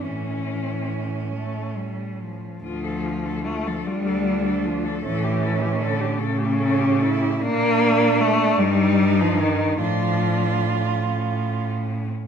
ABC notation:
X:1
M:6/8
L:1/16
Q:3/8=49
K:Dm
V:1 name="Cello"
^C6 z6 | F A F A F A F A F A F A | A G A G A G A G A G A G | D6 _E6 |
D6 ^C4- C z |]
V:2 name="Cello"
^C8- C3 z | z6 D6 | ^C6 A,2 C2 E2 | D6 _E6 |
F8- F z3 |]
V:3 name="Cello" clef=bass
E,6 A,2 G,2 F,2 | F,4 A, F, G,4 F,2 | E,4 D,2 ^C,6 | B,4 A,2 G,3 F, _E,2 |
F,6 z6 |]
V:4 name="Cello" clef=bass
A,,8- A,,3 z | D,,6 D,,6 | A,,6 A,,6 | B,,6 G,,6 |
A,,8- A,,3 z |]